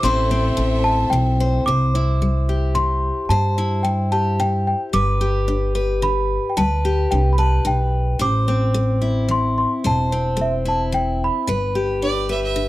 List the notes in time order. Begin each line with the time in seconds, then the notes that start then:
Already playing: C5
0.03 A1 A2 A3 C4 E4 A4 C5 E5 C6
0.31 C4
0.57 A1 A3
0.84 A5
1.10 B1 E3 G5
1.40 C5
1.66 C2 C3 C5 D6
1.95 E4
2.22 G3
2.49 G4
2.75 C3 C6
3.29 G2 C3 C5 A5
3.58 E4
3.83 G3 G5
4.12 G4 A5
4.40 C3 G5
4.67 G5
4.93 G1 G3 B4 D6
5.21 G4
5.48 D4
5.75 B4
6.02 D3 B5
6.50 G5
6.57 D2 G3 B4 A5
6.85 G4
7.11 C2 D4 G5
7.33 B5
7.38 B4 A5
7.65 B1 D3 G5
8.19 A1 A2 C5 D6
8.48 C4
8.74 A3
9.02 E4
9.29 E3 C6
9.58 C6
9.84 E1 A2 C5 A5
10.12 C4
10.37 A3
10.41 E5
10.65 E4 A5
10.92 E3 G5
11.24 B5
11.47 G1 G3 B4
11.75 G4
12.02 D4 D5
12.29 B4 E5
12.44 E5
12.56 D3